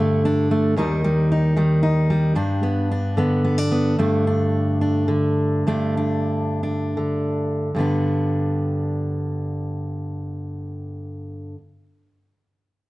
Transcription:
Already playing: G2 D3 D4
0.00 A3
0.25 D4
0.51 A3
0.76 D#2 D#3 G3 D#4
1.04 G3
1.32 D#4
1.57 D#3 G3
1.83 D#4
2.10 G3
2.35 G2 D4
2.63 B3
2.92 D4
3.17 D3 B3
3.44 B3
3.58 D4
3.72 B3
3.99 G2 A3 D4
4.27 D4
4.81 D4
5.08 D3
5.67 G2 A3 D4
5.97 D4
6.63 D4
6.97 D3
7.75 G2 D3 B3
7.80 D4

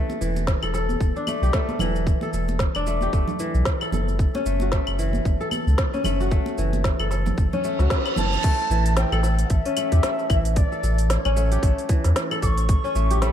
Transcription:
Already playing: A3 C#4 G4
0.10 muted conga, cabasa
0.21 E1 E3, cabasa
0.36 muted conga, cabasa
0.47 kick, snare, cabasa
0.63 E1 A4, cabasa, claves
0.74 A4, snare, cabasa
0.89 high conga, cabasa
1.00 E1, kick, cabasa
1.16 D4, cabasa
1.27 A3, high conga, cabasa, claves
1.42 B1 G4, cabasa
1.53 A3, kick, snare, muted conga, cabasa
1.69 high conga, cabasa
1.79 E1 E3, low conga, cabasa, claves
1.96 cabasa
2.07 kick, cabasa
2.21 A4, muted conga, cabasa
2.33 E1 A4, cabasa
2.48 muted conga, cabasa
2.59 kick, snare, cabasa
2.75 E1 D4, cabasa, claves
2.87 A3, cabasa
3.01 G4, high conga, cabasa
3.13 E1 A3, kick, cabasa
3.28 low conga, cabasa
3.39 E3, cabasa
3.54 B1, cabasa
3.65 kick, snare, cabasa
3.81 A4, cabasa, claves
3.92 F#1 A4, high conga, low conga, cabasa
4.08 cabasa
4.19 kick, cabasa
4.34 C#4, muted conga, cabasa
4.46 F#1 A3, cabasa
4.60 F#4, muted conga, cabasa
4.72 A3, kick, snare, cabasa
4.87 F#1, cabasa, claves
4.99 E3, cabasa
5.13 high conga, cabasa
5.25 F#1, kick, cabasa
5.41 A4, cabasa
5.51 A4, high conga, cabasa, claves
5.67 C#2, cabasa
5.78 kick, snare, muted conga, cabasa
5.94 C#4, high conga, cabasa
6.04 F#1 A3, low conga, cabasa, claves
6.20 F#4, cabasa
6.31 A3, kick, cabasa
6.46 muted conga, cabasa
6.58 F#1 E3, cabasa
6.73 muted conga, cabasa
6.84 kick, snare, cabasa
6.99 F#1 A4, cabasa, claves
7.11 A4, snare, cabasa
7.26 high conga, low conga, cabasa
7.38 F#1, kick, reverse cymbal, cabasa
7.52 C#4, high conga, low conga, cabasa
7.64 A3, cabasa
7.79 C#2 F#4, snare, cabasa
7.90 A3, kick, snare, cabasa
8.06 cabasa, claves
8.16 F#1 E3 A5, high conga, low conga, cabasa
8.33 cabasa
8.44 A3, kick, open hi-hat, crash, cabasa
8.60 cabasa
8.70 A1 E3, cabasa
8.86 open hi-hat, cabasa
8.97 G5, snare, open hi-hat, cabasa
9.12 A1 A4, cabasa, claves
9.23 A4, snare, cabasa
9.39 open hi-hat, cabasa
9.44 F#5
9.50 A1 E5, kick, open hi-hat, cabasa
9.65 C#4, open hi-hat, cabasa
9.77 A3, open hi-hat, cabasa, claves
9.92 E2 G4, kick, open hi-hat, cabasa
10.03 A3, snare, open hi-hat, cabasa
10.19 cabasa
10.30 A1 E3, kick, open hi-hat, cabasa, claves
10.45 open hi-hat, cabasa
10.56 D5, kick, open hi-hat, cabasa
10.72 A4, cabasa
10.83 A1 A4, cabasa
10.98 open hi-hat, cabasa
11.10 C#5, snare, open hi-hat, cabasa
11.25 A1 C#4, cabasa, claves
11.36 A3, cabasa
11.52 G4, open hi-hat, cabasa
11.63 A1 A3, kick, open hi-hat, cabasa
11.78 open hi-hat, cabasa
11.89 E3, kick, open hi-hat, cabasa
12.04 E2, snare, open hi-hat, cabasa
12.16 snare, open hi-hat, cabasa
12.31 A4, cabasa, claves
12.42 A1 A4 C#6 D6, kick, open hi-hat, cabasa
12.57 open hi-hat, cabasa
12.69 kick, open hi-hat, cabasa
12.84 C#4, cabasa
12.95 A1 A3, cabasa
13.11 G4, open hi-hat, cabasa
13.22 A3 B5, snare, open hi-hat, cabasa

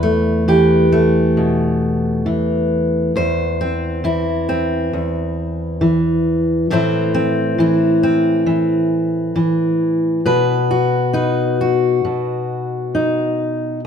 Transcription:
Already playing: E2 E3 B4
0.03 A3
0.48 E3 G4
0.92 A3
1.37 B2
2.26 E3
3.16 E2 C5
3.61 C4
4.04 E3 E4
4.49 C4
4.93 E2
5.81 E3
6.70 A2 E3 C4 E4 C5
7.14 C4
7.58 E3 E4
8.03 C4
8.46 E3
9.36 E3
10.26 B2 B4
10.71 F#4
11.13 D#4 B4
11.61 F#4
12.05 B2
12.95 D#4

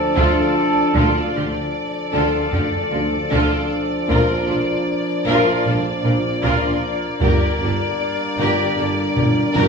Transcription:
Already playing: F3 D4 A4 D5
0.16 D2 D3 F4 A4, taiko
0.94 D2 D3 F3 D4 F4 A4 D5, taiko
1.35 D2 D3 F4 G4
2.12 D2 D3 F4 A4
2.52 D2 D3 F4 G4, taiko low
2.91 D2 D3 F4 A4
3.30 D2 D3 F4 A4, taiko
4.09 A#1 A#2 A#3 F4 A#4, taiko
4.47 A#1 A#2 F4 A4
5.25 A#1 A#2 F4 A#4
5.65 A#1 A#2 F4 A4
6.04 A#1 A#2 F4 A#4
6.42 A#1 A#2 F4 A#4, taiko
7.20 G1 G2 G3 D4 G4 A#4 D5, taiko
7.59 G1 G2 G4 A4
8.37 G1 G2 G4 A#4
8.75 G1 G2 G4 A4
9.16 G1 G2 G4 A#4, taiko low-mid
9.54 G1 G2 G4 A#4, taiko mid

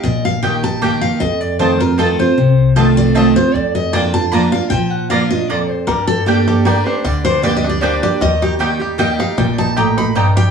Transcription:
0.03 A#1 A#2 D#5
0.25 F5
0.42 D#3 A#3 D#4 G4 D#5 G5
0.63 D#4 G4 A5
0.81 D#3 A#3 D#4 G4 D#5 G5
1.01 F5
1.20 F2 D#5
1.41 D5
1.59 D#3 A3 C4 F4 C5 D#5 A5
1.80 C4 F4 A#4
1.98 D#3 A3 C4 F4 A4 D#5 A5
2.19 C4 F4 C5
2.38 C2 C3
2.76 D#3 A3 C4 F4 D#5 F5 A5
2.97 D5
3.15 D#3 A3 C4 F4 D#5 A5
3.36 C4 F4 C5
3.54 F2 D5
3.75 D#5
3.93 F3 A#3 D4 F4 D5 G5 A#5
4.14 D4 F4 A5
4.32 F3 A#3 D4 F4 D5 A#5
4.52 D4 F4 F5
4.70 A#2 F3 G5
4.91 F#5
5.10 F3 A#3 D4 F4 D5 F5 A#5
5.31 D4 F4 D#5
5.49 F2 A#3 F4 D5 A#5
5.69 C5
5.87 G2 G3 A#4
6.07 A4
6.26 G3 A#3 D4 G4 D5 G5
6.48 G4 A4
6.65 G3 A#3 D4 G4 A#4 D5 G5
6.86 D4 G4 C5
7.04 D2 D3 G3 D5
7.25 D4 C5
7.42 G3 A#3 D4 G4 D5 G5
7.56 D#5
7.63 D4 G4
7.69 D5
7.81 G3 A#3 D4 G4 C5 D5 G5
8.03 G4 D5
8.21 D#2 D#3 G3 D#5
8.42 D#4 G4
8.59 D#3 G3 A#3 D#4 G4 D#5 G5
8.80 D#4 G4
8.98 D#3 G3 A#3 D#4 G4 D#5 G5
9.19 D#4 G4 F5
9.38 A#1 A#2 G3 G5
9.58 D#4 A5
9.76 A2 A#3 G4 D#5 G5 A#5
9.97 D#4 B5
10.15 G2 G3 A#3 G4 D#5 G5 A#5
10.37 G4 G5

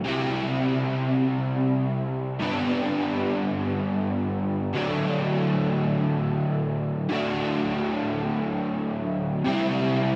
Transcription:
0.04 C3 G3 C4 E4
2.39 G2 D3 G3 B3
2.43 D4
4.74 D3 F#3 A3 D4
7.09 D3 F#3 A3
7.13 D4
9.45 C3 G3 C4
9.49 E4

